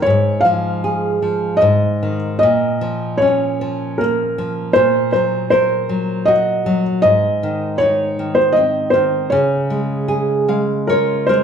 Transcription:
0.02 C#5
0.06 G#2
0.41 F5
0.45 F3
0.84 G#4
1.22 F3
1.57 D#5
1.62 G#2
2.03 D#3
2.39 D#5
2.43 A#2
2.81 F3
3.18 C#5
3.22 C#4
3.61 F3
3.98 A#3 A#4
4.38 F3
4.73 A#2 C5
5.12 F#3 C5
5.50 A#4 C5
5.89 F#3
6.25 F#4 D#5
6.66 F#3
7.02 G#2 D#5
7.43 D#3
7.78 D#4 C#5
8.19 D#3
8.35 C5
8.52 D#5
8.57 C4
8.90 D#3 C5
9.30 C#3 C#5
9.70 G#3
10.08 G#4
10.48 G#3 F5
10.87 F4 A#4 C#5
11.27 G#3 A#4 C5

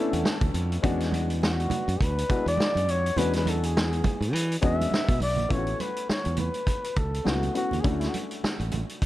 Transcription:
Already playing: A3 B3 C#4 D4 E4 A4 E5
0.13 E2 F#5, closed hi-hat
0.24 A5, snare, high conga
0.41 D2, kick, closed hi-hat, high conga
0.54 F2, closed hi-hat, muted conga
0.72 closed hi-hat
0.82 E2 G#3 B3 C#4 D4 F#4, kick, closed hi-hat, low conga
1.00 snare, closed hi-hat
1.12 closed hi-hat, high conga
1.30 closed hi-hat
1.42 F#4, snare, muted conga
1.60 closed hi-hat
1.70 muted fingered electric bass stroke, closed hi-hat, high conga, low conga
1.88 F#2, closed hi-hat
2.00 D2 B4, kick, closed hi-hat
2.18 closed hi-hat
2.29 G#3 B3 D4 E4 F#4, kick, closed hi-hat
2.46 E2 D5, closed hi-hat
2.57 snare, high conga
2.75 F#2, closed hi-hat, high conga
2.88 F2 C#5, closed hi-hat
3.06 closed hi-hat
3.16 E2 G#3 B3 C#4 D4 F#4 B4, closed hi-hat, muted conga, low conga
3.33 B4, snare, closed hi-hat
3.46 A4, closed hi-hat, muted conga, high conga
3.63 G#4, closed hi-hat
3.77 snare
3.93 closed hi-hat
4.04 muted fingered electric bass stroke, kick, closed hi-hat, muted conga, high conga, low conga
4.21 G#2, closed hi-hat
4.33 E3, closed hi-hat, muted conga
4.52 closed hi-hat
4.61 E2 G#3 B3 C#4 D4 F#4 E5, kick, closed hi-hat, muted conga
4.81 closed hi-hat, high conga
4.91 snare, high conga
5.08 B2, kick, closed hi-hat, high conga
5.20 B1 D5, open hi-hat
5.37 A#1, closed hi-hat, low conga
5.49 A1 A3 B3 C#4 E4 F4 C#5, kick, closed hi-hat, muted conga, low conga
5.57 F#4
5.67 closed hi-hat
5.80 B4, closed hi-hat, high conga
5.96 closed hi-hat
6.09 C#5, muted fingered electric bass stroke, snare, muted conga
6.25 E2, closed hi-hat
6.37 B4, closed hi-hat, high conga, low conga
6.54 closed hi-hat
6.67 kick, closed hi-hat, muted conga
6.84 closed hi-hat
6.96 C#2 A4, kick, closed hi-hat, muted conga
7.14 closed hi-hat
7.24 C#2 A3 B3 C#4 E4 F#4, snare, high conga
7.43 closed hi-hat, high conga
7.54 A3 B3 C#4 E4 F#4, closed hi-hat, muted conga
7.71 D#2, closed hi-hat, low conga
7.80 A3 C#4 D4 G#4, closed hi-hat
7.84 D2 E4 F#4, kick, low conga
7.89 F#4
8.00 E4, snare, closed hi-hat
8.09 F#4
8.14 closed hi-hat, high conga
8.31 closed hi-hat
8.43 muted fingered electric bass stroke, snare, muted conga
8.60 A1, closed hi-hat
8.71 closed hi-hat, high conga, low conga
8.89 closed hi-hat
9.02 kick, closed hi-hat

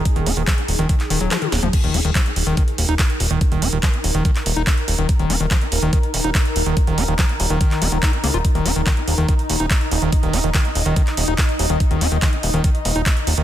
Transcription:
Already playing: D#4 G#4
0.05 kick, closed hi-hat
0.16 D#1 D#3, closed hi-hat
0.26 D#1 D#4, open hi-hat
0.37 D#1 D#3, closed hi-hat
0.47 F3, kick, clap, closed hi-hat
0.58 closed hi-hat
0.68 D#1, open hi-hat
0.79 D#1 D#3, closed hi-hat
0.89 kick, closed hi-hat
1.00 clap, closed hi-hat
1.10 D#1 D#3, open hi-hat
1.21 D#1 F#3, closed hi-hat
1.31 F3, clap, closed hi-hat, high tom
1.42 D#3, closed hi-hat, high tom
1.52 D#1, snare, open hi-hat
1.63 D#1 F3, closed hi-hat, mid tom
1.73 D#4 A#4, kick, closed hi-hat, crash
1.84 D#1 D#3, closed hi-hat
1.94 D#1 D#4, open hi-hat
2.05 D#1 D#3, closed hi-hat
2.15 F3, kick, clap, closed hi-hat
2.26 closed hi-hat
2.36 D#1, open hi-hat
2.47 D#1 D#3, closed hi-hat
2.57 D#3, kick, closed hi-hat
2.68 closed hi-hat
2.78 D#1, open hi-hat
2.89 D#1 D#4, closed hi-hat
2.99 kick, clap, closed hi-hat
3.10 closed hi-hat
3.20 D#1, open hi-hat
3.31 D#1 D#3, closed hi-hat
3.41 kick, closed hi-hat
3.52 D#1 D#3, closed hi-hat
3.62 D#1 D#4, open hi-hat
3.73 D#1 D#3, closed hi-hat
3.83 F3, kick, clap, closed hi-hat
3.94 closed hi-hat
4.04 D#1, open hi-hat
4.15 D#1 D#3, closed hi-hat
4.25 kick, closed hi-hat
4.36 clap, closed hi-hat
4.46 D#1, open hi-hat
4.57 D#1 D#4, closed hi-hat
4.67 kick, clap, closed hi-hat
4.77 closed hi-hat
4.88 D#1, open hi-hat
4.98 D#1 D#3, closed hi-hat
5.09 kick, closed hi-hat
5.19 D#1 D#3, closed hi-hat
5.30 D#1 D#4, open hi-hat
5.40 D#1 D#3, closed hi-hat
5.51 F3, kick, clap, closed hi-hat
5.61 closed hi-hat
5.72 D#1, open hi-hat
5.82 D#1 D#3, closed hi-hat
5.93 D#3, kick, closed hi-hat
6.03 closed hi-hat
6.14 D#1, open hi-hat
6.24 D#1 D#4
6.35 kick, clap, closed hi-hat
6.45 closed hi-hat
6.56 D#1, open hi-hat
6.66 D#1 D#3, closed hi-hat
6.77 kick, closed hi-hat
6.87 D#1 D#3, closed hi-hat
6.98 D#1 D#4, open hi-hat
7.08 D#1 D#3, closed hi-hat
7.19 F3, kick, clap, closed hi-hat
7.29 closed hi-hat
7.40 D#1, open hi-hat
7.50 D#1 D#3, closed hi-hat
7.61 kick, closed hi-hat
7.71 clap, closed hi-hat
7.82 D#1 D#4, open hi-hat
7.92 D#1 D#3, closed hi-hat
8.03 D#4, kick, clap, closed hi-hat
8.13 closed hi-hat
8.24 C#2 A#3, open hi-hat
8.34 D#1 F4, closed hi-hat
8.45 D#5, kick, closed hi-hat
8.55 D#1 D#3, closed hi-hat
8.66 D#1 D#4, open hi-hat
8.76 D#1 D#3, closed hi-hat
8.87 D#3, kick, clap, closed hi-hat
8.97 closed hi-hat
9.08 D#1, open hi-hat
9.18 D#1 D#3, closed hi-hat
9.29 kick, closed hi-hat
9.39 closed hi-hat
9.50 D#1, open hi-hat
9.60 D#1 D#4, closed hi-hat
9.70 kick, clap, closed hi-hat
9.81 closed hi-hat
9.91 D#1, open hi-hat
10.02 D#1 D#3, closed hi-hat
10.12 kick, closed hi-hat
10.23 D#1 D#3, closed hi-hat
10.33 D#1 D#4, open hi-hat
10.44 D#1 D#3, closed hi-hat
10.54 D#3, kick, clap, closed hi-hat
10.65 closed hi-hat
10.75 D#1, open hi-hat
10.86 D#1 D#3, closed hi-hat
10.96 kick, closed hi-hat
11.07 clap, closed hi-hat
11.17 D#1, open hi-hat
11.28 D#1 D#4, closed hi-hat
11.38 kick, clap, closed hi-hat
11.49 closed hi-hat
11.59 D#1, open hi-hat
11.70 D#1 D#3, closed hi-hat
11.80 kick, closed hi-hat
11.91 D#1 D#3, closed hi-hat
12.01 D#1 D#4, open hi-hat
12.12 D#1 D#3, closed hi-hat
12.22 D#3, kick, clap, closed hi-hat
12.33 closed hi-hat
12.43 D#1, open hi-hat
12.54 D#1 D#3, closed hi-hat
12.64 kick, closed hi-hat
12.75 closed hi-hat
12.85 D#1, open hi-hat
12.96 D#1 D#4, closed hi-hat
13.06 kick, clap, closed hi-hat
13.17 closed hi-hat
13.27 D#1, open hi-hat
13.38 D#1 D#3, closed hi-hat

